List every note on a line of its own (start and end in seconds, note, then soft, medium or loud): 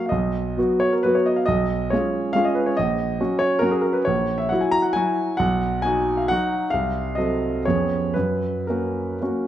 0.06 0.80 D#5 medium
0.06 0.12 F5 medium
0.11 0.56 B1 medium
0.57 1.00 F#3 medium
0.57 1.01 B3 medium
0.57 1.01 F#4 medium
0.80 0.92 C#5 medium
0.92 1.04 A#4 medium
1.03 1.43 F#3 medium
1.03 1.44 B3 medium
1.03 1.44 F#4 medium
1.03 1.14 B4 medium
1.15 1.26 C#5 medium
1.26 1.36 D#5 medium
1.36 1.47 F5 medium
1.46 1.91 B1 medium
1.46 1.91 D#5 medium
1.90 2.32 G#3 medium
1.90 2.32 C#4 soft
1.90 2.33 F4 medium
1.90 2.35 C#5 medium
2.33 2.74 G#3 medium
2.33 2.75 C#4 medium
2.33 2.75 F4 medium
2.33 2.45 F5 loud
2.45 2.56 D#5 medium
2.55 2.67 B4 medium
2.66 2.78 C#5 medium
2.77 3.19 A#1 medium
2.77 3.41 D#5 medium
3.20 3.59 F#3 medium
3.20 3.59 C#4 medium
3.20 3.59 F#4 medium
3.39 3.62 C#5 loud
3.59 4.02 F#3 medium
3.59 4.02 C#4 medium
3.59 4.01 F#4 medium
3.59 3.72 A#4 medium
3.71 3.83 G#4 medium
3.82 3.94 A#4 medium
3.93 4.05 B4 medium
4.05 4.49 A#1 medium
4.05 4.38 C#5 medium
4.38 4.50 E5 medium
4.49 4.91 F#3 medium
4.49 4.92 E4 medium
4.49 4.92 F#4 medium
4.49 4.61 F#5 medium
4.61 4.72 G#5 medium
4.71 4.83 A#5 loud
4.82 4.94 F#5 medium
4.93 5.35 F#3 medium
4.93 5.35 E4 medium
4.93 5.35 F#4 medium
4.93 5.37 G#5 loud
5.37 5.83 B1 medium
5.37 5.83 F#5 medium
5.82 6.25 F#3 medium
5.82 6.25 D#4 medium
5.82 6.25 F#4 medium
5.82 6.17 G#5 loud
6.17 6.28 F5 medium
6.28 6.67 F#3 medium
6.28 6.68 D#4 medium
6.28 6.68 F#4 medium
6.28 6.70 F#5 loud
6.70 7.16 C2 medium
6.70 7.16 F5 loud
7.15 7.62 F#3 soft
7.15 7.62 C4 soft
7.15 7.62 A4 medium
7.15 7.65 D#5 medium
7.65 8.14 F2 medium
7.65 8.11 B3 soft
7.65 8.12 C#4 soft
7.65 8.12 G#4 soft
7.65 8.15 C#5 medium
8.14 8.67 F#2 medium
8.14 8.67 B4 medium
8.67 9.18 A#3 soft
8.67 9.18 C#4 soft
8.67 9.18 F#4 soft
8.67 9.46 A#4 medium
9.21 9.47 A#3 soft
9.21 9.47 C#4 soft
9.21 9.47 F#4 soft